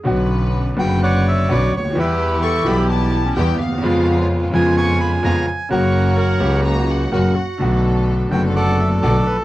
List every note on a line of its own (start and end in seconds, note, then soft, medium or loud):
0.03 0.74 B1 medium
0.03 0.74 B1 loud
0.03 0.74 B2 medium
0.03 0.73 D3 medium
0.03 0.73 B3 medium
0.03 0.74 C#4 medium
0.03 0.75 F#4 medium
0.03 0.75 B4 medium
0.74 1.45 F#1 medium
0.74 1.46 F#1 loud
0.74 1.45 F#2 medium
0.74 1.46 C#3 medium
0.74 1.44 D3 medium
0.74 1.45 B3 medium
0.74 1.46 B4 medium
0.79 1.46 F#4 medium
0.79 1.01 G5 loud
1.03 1.75 C#5 medium
1.03 1.50 D5 medium
1.03 1.25 F#5 loud
1.28 1.49 E5 medium
1.49 1.69 B1 medium
1.49 1.69 B1 loud
1.49 1.69 B2 medium
1.49 1.69 D3 medium
1.49 1.69 B3 medium
1.49 1.69 C#4 medium
1.49 1.69 D4 medium
1.49 1.69 F#4 medium
1.49 1.69 B4 medium
1.49 1.72 D5 medium
1.73 1.96 D2 medium
1.73 1.99 C#5 medium
1.79 1.85 C#2 medium
1.84 1.91 D2 medium
1.90 1.96 D#2 medium
1.95 2.63 E2 loud
1.95 2.63 E3 medium
1.95 2.62 G3 medium
1.95 2.63 B3 medium
1.95 2.63 E4 medium
1.95 2.63 G4 medium
1.95 2.63 G4 loud
1.99 2.87 E4 medium
1.99 2.87 G4 medium
1.99 2.41 B4 medium
2.43 2.80 A4 loud
2.43 2.65 C#6 loud
2.65 3.33 B1 loud
2.65 3.33 B1 medium
2.65 3.33 B2 medium
2.65 3.32 E3 medium
2.65 3.33 G3 medium
2.65 3.33 B3 medium
2.65 3.33 E4 medium
2.65 3.33 G4 loud
2.65 3.34 G4 medium
2.65 2.90 B5 loud
2.79 2.92 G4 loud
2.89 3.25 E4 loud
2.89 3.33 A5 loud
3.25 3.38 C#4 medium
3.36 3.56 E2 loud
3.36 3.56 E2 medium
3.36 3.56 E3 medium
3.36 3.56 G3 medium
3.36 3.56 B3 medium
3.36 4.30 B3 medium
3.36 3.56 E4 medium
3.36 3.56 G4 medium
3.36 3.57 G4 loud
3.36 3.60 G5 loud
3.59 3.82 D#2 medium
3.59 4.38 F5 medium
3.67 3.72 D2 medium
3.72 3.78 D#2 medium
3.78 3.84 E2 medium
3.82 4.49 F2 loud
3.82 4.50 F2 loud
3.82 4.49 C#3 medium
3.82 4.50 F3 loud
3.82 4.50 G#3 medium
3.82 4.50 B3 loud
3.82 4.50 B3 medium
3.82 4.50 C#4 medium
3.82 4.50 F4 loud
3.82 4.51 F4 loud
4.51 5.20 F2 loud
4.51 5.19 C#3 medium
4.51 5.20 F3 loud
4.51 5.20 G#3 medium
4.51 5.20 B3 loud
4.51 5.21 B3 medium
4.51 5.20 C#4 medium
4.51 5.21 F4 loud
4.51 4.76 G#5 loud
4.56 5.21 F4 medium
4.77 5.46 G#5 medium
4.77 4.99 C#6 loud
5.01 5.11 B5 loud
5.23 5.43 F2 medium
5.23 5.43 C#3 medium
5.23 5.43 F3 medium
5.23 5.43 G#3 medium
5.23 5.43 B3 medium
5.23 5.44 B3 medium
5.23 5.44 C#4 medium
5.23 5.43 F4 medium
5.23 5.44 F4 medium
5.23 5.46 A#5 loud
5.47 5.69 G#5 medium
5.69 6.37 F#1 loud
5.69 6.37 F#2 medium
5.69 6.37 C#3 medium
5.69 6.38 F#3 medium
5.69 6.38 A#3 medium
5.69 6.38 C#4 medium
5.69 6.38 F#4 loud
5.69 6.39 F#4 medium
5.69 6.61 A#4 medium
5.69 6.61 C#5 medium
5.69 6.14 F#5 medium
6.17 6.39 A#4 loud
6.17 6.61 F#5 medium
6.40 7.08 C#2 medium
6.40 7.09 C#2 loud
6.40 7.08 C#3 medium
6.40 7.08 F#3 medium
6.40 7.09 A#3 medium
6.40 7.09 C#4 medium
6.40 7.09 F#4 medium
6.40 7.10 F#4 medium
6.40 6.63 G4 medium
6.65 7.09 F#4 medium
6.65 6.89 A#5 medium
6.90 7.84 F#5 medium
7.12 7.32 F#1 medium
7.12 7.32 F#2 medium
7.12 7.32 C#3 medium
7.12 7.32 F#3 medium
7.12 7.32 A#3 medium
7.12 7.33 A#3 medium
7.12 7.33 C#4 medium
7.12 7.32 F#4 medium
7.12 7.33 F#4 medium
7.12 7.37 A#4 medium
7.36 8.19 F#4 medium
7.58 8.27 B1 loud
7.58 8.28 B1 medium
7.58 8.27 B2 medium
7.58 8.26 D3 medium
7.58 8.27 A3 medium
7.58 8.28 B3 medium
7.58 8.28 D4 medium
7.58 8.28 A4 loud
7.62 8.29 F#4 medium
8.29 8.99 F#1 loud
8.29 8.99 F#1 medium
8.29 8.99 F#2 medium
8.29 8.98 D3 medium
8.29 8.98 A3 medium
8.29 8.99 B3 medium
8.29 8.99 D4 medium
8.29 8.99 A4 loud
8.29 8.42 G5 loud
8.33 9.00 F#4 medium
8.56 9.45 A4 medium
8.56 9.00 D5 medium
8.56 8.80 F#5 loud
8.79 8.90 E5 medium
9.02 9.22 B1 medium
9.02 9.23 B1 medium
9.02 9.22 B2 medium
9.02 9.22 D3 medium
9.02 9.22 A3 medium
9.02 9.22 B3 medium
9.02 9.22 D4 medium
9.02 9.23 F#4 medium
9.02 9.22 A4 loud
9.02 9.26 D5 loud
9.26 9.45 B1 medium
9.26 9.37 B4 medium
9.32 9.38 A#1 medium
9.39 9.44 B1 medium